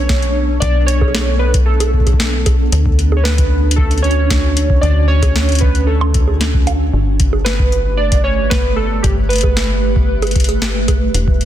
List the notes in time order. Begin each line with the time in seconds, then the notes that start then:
Already playing: B1 B3 D4 A4 C#5
0.09 kick, snare
0.22 closed hi-hat
0.60 B1 D5, kick, closed hi-hat
0.86 C#5, closed hi-hat
1.01 kick, high bongo
1.08 high bongo
1.15 snare, closed hi-hat, high bongo
1.21 high bongo
1.39 B4
1.54 kick, closed hi-hat
1.66 A4
1.80 closed hi-hat, high bongo
1.94 kick
2.00 kick
2.07 kick, closed hi-hat, high bongo
2.13 kick
2.20 snare
2.46 kick, closed hi-hat, high bongo
2.72 D2 C#4 F#4, closed hi-hat
2.86 kick
2.99 closed hi-hat
3.12 high bongo
3.17 C#5
3.24 B4, snare
3.38 kick, closed hi-hat
3.71 closed hi-hat
3.76 A4, kick
3.91 closed hi-hat
3.98 closed hi-hat
4.02 C#5, closed hi-hat
4.11 closed hi-hat
4.30 kick, snare, closed hi-hat
4.57 closed hi-hat
4.70 kick
4.81 D2 D5, closed hi-hat
5.08 C#5
5.22 kick, closed hi-hat, high bongo
5.36 snare
5.49 closed hi-hat
5.52 closed hi-hat
5.55 closed hi-hat
5.59 B4, kick, closed hi-hat
5.75 closed hi-hat
5.87 A4
6.01 high bongo
6.14 kick, closed hi-hat
6.28 high bongo
6.41 snare, closed hi-hat
6.54 kick
6.67 closed hi-hat, high bongo
6.93 G1 A3 G4 B4
7.20 kick, closed hi-hat
7.33 high bongo
7.45 B4, snare, closed hi-hat
7.59 kick
7.72 closed hi-hat
7.97 D5
8.12 kick, closed hi-hat
8.24 C#5
8.50 B4, kick, snare
8.76 A4
9.03 G1 G4, kick, closed hi-hat
9.29 B4, closed hi-hat
9.33 closed hi-hat
9.36 closed hi-hat
9.38 closed hi-hat
9.41 kick, closed hi-hat, high bongo
9.57 snare, closed hi-hat
9.96 kick
10.22 closed hi-hat, high bongo
10.27 closed hi-hat
10.31 closed hi-hat
10.36 kick, closed hi-hat
10.40 closed hi-hat
10.44 closed hi-hat
10.49 closed hi-hat, high bongo
10.62 snare
10.88 kick, closed hi-hat, high bongo
11.14 E1 G3 E4 D5, closed hi-hat
11.28 kick
11.41 closed hi-hat